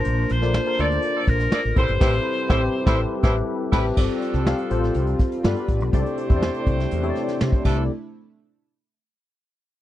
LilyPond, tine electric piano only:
\new Staff \with { instrumentName = "Tine electric piano" } { \time 4/4 \key c \mixolydian \tempo 4 = 122 <d' f' bes' c'' a''>8 r16 <d' f' a' bes' d''>8 <d' f' a' bes' c''>4.~ <d' f' a' bes' c''>16 r8 <c' e' g' a' bes' b'>8 | <c' e' g' a' b'>8 r8 <c' e' g' a'>8 r16 <c' e' g' a' b'>8 r16 <c' e' g' a' b'>8 r8 <c' e' g' a' b'>8 | <c' f' g' a' d''>4 <c' f' g' a' f''>8 <c' f' g' a' c''>4. <b f' g' a' d''>4 | <c' e' g' a' d''>8. <c' e' g' a' c'' d''>4~ <c' e' g' a' c'' d''>16 r16 <c' e' g' a' des'' d''>4~ <c' e' g' a' des'' d''>16 <c' e' g' a' d''>8 |
r1 | }